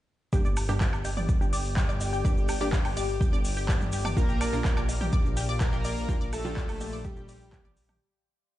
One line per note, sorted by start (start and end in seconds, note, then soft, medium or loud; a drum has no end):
0.33 4.14 G1 medium
0.33 0.66 G2 medium
0.33 0.66 A#3 medium
0.33 0.66 D4 medium
0.33 0.66 G4 medium
0.33 0.37 G4 medium
0.33 7.97 G4 medium
0.33 4.13 D5 medium
0.33 0.37 G5 medium
0.33 4.13 G5 medium
0.33 6.05 D6 medium
0.33 kick loud
0.33 shaker medium
0.45 0.48 D5 loud
0.45 0.48 D6 medium
0.45 shaker soft
0.57 open hi-hat loud
0.57 high woodblock medium
0.57 shaker loud
0.69 2.22 G2 medium
0.69 2.22 A#3 medium
0.69 2.22 D4 medium
0.69 2.22 G4 medium
0.69 0.73 G4 medium
0.69 0.73 G5 medium
0.69 high conga medium
0.69 shaker soft
0.81 0.84 D5 loud
0.81 0.84 D6 medium
0.81 kick loud
0.81 clap loud
0.81 shaker medium
0.93 high woodblock medium
0.93 shaker soft
1.05 1.09 G4 medium
1.05 1.09 G5 medium
1.05 open hi-hat loud
1.05 high bongo medium
1.05 shaker loud
1.17 1.20 D5 loud
1.17 1.20 D6 medium
1.17 mid tom medium
1.17 shaker soft
1.29 kick loud
1.29 shaker medium
1.41 1.45 G4 medium
1.41 1.45 G5 medium
1.41 high conga medium
1.41 shaker soft
1.53 1.56 D5 loud
1.53 1.56 D6 medium
1.53 open hi-hat loud
1.53 shaker medium
1.65 shaker soft
1.77 1.81 G4 medium
1.77 1.81 G5 medium
1.77 kick loud
1.77 clap loud
1.77 shaker medium
1.89 1.92 D5 loud
1.89 1.92 D6 medium
1.89 high bongo medium
1.89 shaker soft
2.01 open hi-hat loud
2.01 high bongo medium
2.01 shaker medium
2.13 2.17 G4 medium
2.13 2.17 G5 medium
2.13 shaker soft
2.25 2.58 G2 medium
2.25 2.58 A#3 medium
2.25 2.58 D4 medium
2.25 2.58 G4 medium
2.25 2.28 D5 loud
2.25 2.28 D6 medium
2.25 kick loud
2.25 shaker medium
2.37 shaker soft
2.49 2.53 G4 medium
2.49 2.53 G5 medium
2.49 open hi-hat loud
2.49 high woodblock medium
2.49 shaker loud
2.61 4.14 G2 medium
2.61 4.14 A#3 medium
2.61 4.14 D4 medium
2.61 4.14 G4 medium
2.61 2.64 D5 loud
2.61 2.64 D6 medium
2.61 high conga medium
2.61 shaker soft
2.73 kick loud
2.73 clap loud
2.73 shaker medium
2.85 2.89 G4 medium
2.85 2.89 G5 medium
2.85 open hi-hat medium
2.85 high woodblock medium
2.85 shaker soft
2.97 3.00 D5 loud
2.97 3.00 D6 medium
2.97 open hi-hat loud
2.97 high bongo medium
2.97 shaker medium
3.09 shaker soft
3.21 3.25 G4 medium
3.21 3.25 G5 medium
3.21 kick loud
3.21 shaker medium
3.33 3.36 D5 loud
3.33 3.36 D6 medium
3.33 high conga medium
3.33 shaker soft
3.45 open hi-hat loud
3.45 shaker medium
3.57 3.61 G4 medium
3.57 3.61 G5 medium
3.57 shaker soft
3.69 3.72 D5 loud
3.69 3.72 D6 medium
3.69 kick loud
3.69 clap loud
3.69 shaker medium
3.81 mid tom loud
3.81 shaker soft
3.92 3.97 G4 medium
3.92 3.97 G5 medium
3.92 open hi-hat loud
3.92 shaker loud
4.05 4.08 D5 loud
4.05 4.08 D6 medium
4.05 mid tom medium
4.05 high bongo medium
4.05 high woodblock medium
4.05 shaker soft
4.17 7.98 A#1 medium
4.17 4.50 A#2 medium
4.17 4.50 A#3 medium
4.17 4.79 A#3 medium
4.17 4.50 D4 medium
4.17 4.50 F4 medium
4.17 4.79 A#4 loud
4.17 7.97 D5 medium
4.17 7.97 F5 medium
4.17 kick loud
4.17 shaker medium
4.29 4.33 G4 medium
4.29 4.33 G5 medium
4.29 shaker soft
4.41 4.44 D5 loud
4.41 4.44 D6 medium
4.41 open hi-hat loud
4.41 high woodblock medium
4.41 shaker loud
4.53 6.06 A#2 medium
4.53 6.06 A#3 medium
4.53 6.06 D4 medium
4.53 6.06 F4 medium
4.53 high conga medium
4.53 shaker soft
4.65 4.69 G4 medium
4.65 4.69 G5 medium
4.65 kick loud
4.65 clap loud
4.65 shaker medium
4.77 4.80 D5 loud
4.77 4.80 D6 medium
4.77 high woodblock medium
4.77 shaker soft
4.89 open hi-hat loud
4.89 high bongo medium
4.89 shaker loud
5.01 5.05 G4 medium
5.01 5.05 G5 medium
5.01 mid tom medium
5.01 shaker soft
5.12 5.16 D5 loud
5.12 5.16 D6 medium
5.12 kick loud
5.12 shaker medium
5.25 high conga medium
5.25 shaker soft
5.37 5.41 G4 medium
5.37 5.41 G5 medium
5.37 open hi-hat loud
5.37 shaker loud
5.49 5.52 D5 loud
5.49 5.52 D6 medium
5.49 shaker soft
5.60 6.23 A#3 medium
5.60 6.23 A#4 loud
5.60 kick loud
5.60 clap loud
5.60 shaker medium
5.73 5.77 G4 medium
5.73 5.77 G5 medium
5.73 high bongo medium
5.73 shaker soft
5.84 5.88 D5 loud
5.84 5.88 D6 medium
5.84 open hi-hat loud
5.84 high bongo medium
5.84 shaker loud
5.98 shaker soft
6.09 6.42 A#2 medium
6.09 6.42 A#3 medium
6.09 6.42 D4 medium
6.09 6.42 F4 medium
6.09 6.13 G4 medium
6.09 6.13 G5 medium
6.09 7.99 C6 medium
6.09 kick loud
6.09 shaker medium
6.21 6.24 D5 loud
6.21 6.24 D6 medium
6.21 shaker soft
6.33 6.95 A3 medium
6.33 6.95 A4 loud
6.33 open hi-hat loud
6.33 high woodblock medium
6.33 shaker loud
6.45 7.98 A#2 medium
6.45 7.98 F3 medium
6.45 7.98 D4 medium
6.45 7.98 F4 medium
6.45 6.49 G4 medium
6.45 6.49 G5 medium
6.45 high conga medium
6.45 shaker soft
6.57 6.60 D5 loud
6.57 6.60 D6 medium
6.57 kick loud
6.57 clap loud
6.57 shaker soft
6.69 open hi-hat medium
6.69 high woodblock medium
6.69 shaker soft
6.80 6.85 G4 medium
6.80 6.85 G5 medium
6.80 open hi-hat loud
6.80 high bongo medium
6.80 shaker loud
6.93 6.96 D5 loud
6.93 6.96 D6 medium
6.93 shaker soft
7.05 7.91 G3 medium
7.05 7.91 G4 loud
7.05 kick loud
7.05 shaker medium
7.16 7.21 G4 medium
7.16 7.21 G5 medium
7.16 high conga medium
7.16 shaker soft
7.28 7.32 D5 loud
7.28 7.32 D6 medium
7.28 open hi-hat loud
7.28 shaker medium
7.41 shaker soft
7.53 7.57 G4 medium
7.53 7.57 G5 medium
7.53 kick loud
7.53 clap loud
7.53 shaker medium
7.64 7.68 D5 loud
7.64 7.68 D6 medium
7.64 mid tom loud
7.64 shaker soft
7.77 open hi-hat loud
7.77 shaker medium
7.89 7.93 G4 medium
7.89 7.93 G5 medium
7.89 mid tom medium
7.89 high bongo medium
7.89 high woodblock medium
7.89 shaker soft